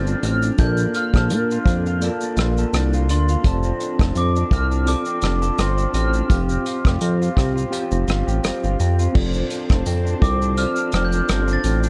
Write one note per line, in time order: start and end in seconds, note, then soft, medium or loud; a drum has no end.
0.00 0.15 G1 medium
0.00 2.67 F3 medium
0.00 0.21 C4 medium
0.00 0.30 C4 medium
0.00 0.31 F4 medium
0.00 0.31 A4 medium
0.00 0.59 A4 soft
0.00 0.31 D5 medium
0.00 0.20 A6 loud
0.07 0.42 D4 medium
0.07 shaker soft
0.22 0.51 A1 medium
0.22 0.58 C4 medium
0.22 0.60 F6 medium
0.22 closed hi-hat medium
0.22 shaker soft
0.42 0.78 D4 medium
0.42 shaker medium
0.57 0.87 A#1 loud
0.57 1.73 A#3 medium
0.57 2.01 A#3 medium
0.57 1.74 F4 medium
0.57 1.74 A4 medium
0.57 1.15 A4 medium
0.57 1.75 D5 medium
0.57 0.75 G6 loud
0.57 kick medium
0.57 closed hi-hat medium
0.57 shaker medium
0.77 1.31 D4 medium
0.77 shaker soft
0.94 1.51 F4 medium
0.94 2.33 F6 medium
0.94 closed hi-hat soft
0.94 shaker soft
1.14 1.31 A#1 loud
1.14 2.04 A4 medium
1.14 kick medium
1.14 cross-stick medium
1.14 shaker soft
1.30 1.58 A#2 medium
1.30 1.67 D4 medium
1.30 closed hi-hat medium
1.30 shaker medium
1.51 1.87 F4 medium
1.51 shaker soft
1.65 2.09 F2 medium
1.65 2.23 D4 medium
1.65 kick medium
1.65 closed hi-hat medium
1.65 shaker medium
1.86 2.38 F4 medium
1.86 shaker soft
2.00 3.16 A#3 medium
2.00 3.45 A#3 medium
2.00 3.17 F4 medium
2.00 3.17 A4 medium
2.00 2.58 A4 medium
2.00 3.18 D5 medium
2.00 closed hi-hat medium
2.00 shaker medium
2.21 2.74 D4 medium
2.21 shaker soft
2.37 2.65 A#1 loud
2.37 2.94 F4 medium
2.37 cross-stick medium
2.37 closed hi-hat soft
2.37 shaker soft
2.57 3.46 A4 medium
2.57 shaker soft
2.73 3.10 C2 medium
2.73 3.10 D4 medium
2.73 cross-stick loud
2.73 closed hi-hat medium
2.73 shaker medium
2.93 3.29 F4 medium
2.93 shaker soft
3.08 3.37 D2 medium
3.08 3.65 D4 medium
3.08 4.12 C6 medium
3.08 closed hi-hat medium
3.08 shaker medium
3.29 3.80 F4 medium
3.29 shaker medium
3.43 3.73 F1 loud
3.43 4.87 F3 medium
3.43 4.59 C4 medium
3.43 4.60 F4 medium
3.43 4.60 A4 medium
3.43 3.99 A4 medium
3.43 4.61 D5 medium
3.43 kick loud
3.43 closed hi-hat medium
3.43 shaker medium
3.63 4.17 C4 medium
3.63 shaker soft
3.80 4.35 D4 medium
3.80 closed hi-hat soft
3.80 shaker soft
3.99 4.12 F1 loud
3.99 4.87 A4 medium
3.99 kick medium
3.99 cross-stick medium
3.99 shaker soft
4.16 4.44 F2 medium
4.16 4.51 C4 medium
4.16 4.53 D6 medium
4.16 closed hi-hat medium
4.16 shaker medium
4.36 4.70 D4 medium
4.36 shaker soft
4.51 4.95 C2 loud
4.51 5.06 C4 medium
4.51 4.85 F6 medium
4.51 kick medium
4.51 closed hi-hat medium
4.51 shaker medium
4.71 5.21 D4 medium
4.71 shaker soft
4.85 6.29 F3 medium
4.85 6.02 C4 medium
4.85 6.02 F4 medium
4.85 6.03 A4 medium
4.85 5.41 A4 medium
4.85 6.03 D5 medium
4.85 5.55 D6 loud
4.85 closed hi-hat medium
4.85 shaker medium
5.05 5.59 C4 medium
5.05 shaker soft
5.22 5.51 F1 loud
5.22 5.77 D4 medium
5.22 cross-stick medium
5.22 closed hi-hat soft
5.22 shaker medium
5.42 6.29 A4 medium
5.42 shaker soft
5.58 5.87 G1 medium
5.58 5.94 C4 medium
5.58 5.93 C6 medium
5.58 cross-stick medium
5.58 closed hi-hat medium
5.58 shaker medium
5.78 6.13 D4 soft
5.78 shaker soft
5.94 6.22 A1 medium
5.94 6.50 C4 medium
5.94 8.41 F6 medium
5.94 closed hi-hat soft
5.94 shaker soft
6.14 6.38 D4 medium
6.14 shaker soft
6.28 6.58 F1 loud
6.28 7.72 F3 medium
6.28 7.45 C4 medium
6.28 7.44 F4 medium
6.28 7.45 G4 medium
6.28 6.85 G4 medium
6.28 7.46 F5 medium
6.28 kick medium
6.28 closed hi-hat medium
6.28 shaker medium
6.49 7.02 C4 medium
6.49 shaker soft
6.66 7.21 F4 medium
6.66 closed hi-hat soft
6.66 shaker soft
6.85 6.98 F1 loud
6.85 7.72 G4 medium
6.85 kick medium
6.85 cross-stick medium
6.85 shaker soft
7.01 7.29 F2 loud
7.01 7.36 C4 medium
7.01 closed hi-hat medium
7.01 shaker medium
7.22 7.55 F4 medium
7.22 shaker soft
7.36 7.65 C2 loud
7.36 7.91 C4 medium
7.36 kick medium
7.36 cross-stick medium
7.36 closed hi-hat medium
7.36 shaker medium
7.56 8.07 F4 medium
7.56 shaker soft
7.70 9.15 F3 medium
7.70 8.87 C4 medium
7.70 8.87 F4 medium
7.70 8.88 G4 medium
7.70 8.26 G4 medium
7.70 8.88 F5 medium
7.70 closed hi-hat medium
7.70 shaker medium
7.91 8.05 F1 medium
7.91 8.43 C4 medium
7.91 shaker soft
8.08 8.23 G1 medium
8.08 8.63 F4 soft
8.08 cross-stick medium
8.08 closed hi-hat medium
8.08 shaker soft
8.27 8.40 A1 medium
8.27 9.22 G4 soft
8.27 shaker soft
8.43 8.52 G1 soft
8.43 8.79 C4 medium
8.43 cross-stick loud
8.43 closed hi-hat medium
8.43 shaker medium
8.64 8.76 G1 medium
8.64 8.99 F4 medium
8.64 shaker soft
8.80 9.08 F2 medium
8.80 9.38 C4 medium
8.80 closed hi-hat medium
8.80 shaker medium
8.99 9.34 F4 medium
8.99 shaker soft
9.12 9.44 F1 medium
9.12 10.58 F3 medium
9.12 10.01 C4 medium
9.12 10.02 F4 medium
9.12 11.89 F4 medium
9.12 10.02 A4 medium
9.12 10.03 D5 medium
9.12 kick loud
9.12 crash loud
9.16 11.89 A4 medium
9.16 11.89 C5 medium
9.16 11.89 D6 medium
9.33 9.69 D4 medium
9.33 shaker soft
9.50 9.86 C4 medium
9.50 closed hi-hat soft
9.50 shaker soft
9.70 9.83 F1 medium
9.70 10.05 D4 medium
9.70 kick medium
9.70 cross-stick medium
9.70 shaker soft
9.86 10.15 F2 medium
9.86 10.21 C4 medium
9.86 closed hi-hat medium
9.86 shaker medium
10.05 10.41 D4 medium
10.05 shaker soft
10.20 10.66 C2 medium
10.20 10.50 C4 medium
10.20 10.93 C4 medium
10.20 10.50 F4 medium
10.20 10.51 A4 medium
10.20 10.51 D5 medium
10.20 10.59 D6 medium
10.20 kick medium
10.20 closed hi-hat medium
10.20 shaker medium
10.42 10.77 D4 medium
10.42 shaker soft
10.56 11.89 F3 medium
10.56 11.72 C4 medium
10.56 11.73 F4 medium
10.56 11.74 A4 medium
10.56 11.74 D5 medium
10.56 11.06 F6 loud
10.56 closed hi-hat medium
10.56 shaker medium
10.76 11.14 D4 medium
10.76 shaker medium
10.92 11.22 F1 loud
10.92 11.27 C4 medium
10.92 cross-stick medium
10.92 closed hi-hat soft
10.92 shaker soft
11.05 11.54 G6 medium
11.12 11.47 D4 medium
11.12 shaker medium
11.29 11.58 G1 medium
11.29 11.63 C4 medium
11.29 cross-stick loud
11.29 closed hi-hat medium
11.29 shaker medium
11.47 11.83 D4 medium
11.47 shaker soft
11.53 11.89 A6 medium
11.64 11.89 A1 medium
11.64 11.89 C4 medium
11.64 closed hi-hat medium
11.64 shaker medium
11.83 11.89 D4 medium
11.83 shaker medium